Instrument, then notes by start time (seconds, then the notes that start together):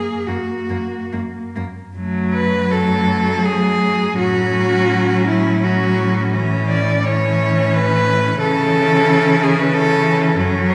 cello
Already playing: A#3 G#4
0.27 F#2 A#3 F#4
0.70 F#2 A#3
1.12 F#2 A#3
1.56 F#2 A#3
1.96 F#2 F#3 A3
2.33 B4
2.70 F#3 A3 A4
3.46 G#4
4.18 A2 F#3 C#4 F#4
5.28 E4
5.62 F#3 C#4 F#4
6.34 E3 C#4
6.69 D5
7.04 E3 C#4 C#5
7.74 B4
8.39 C#3 E3 C#4 A4
9.43 G#4
9.59 B4
9.73 E3 C#4 A4
10.38 F#2 F#3 C#4
10.71 C#5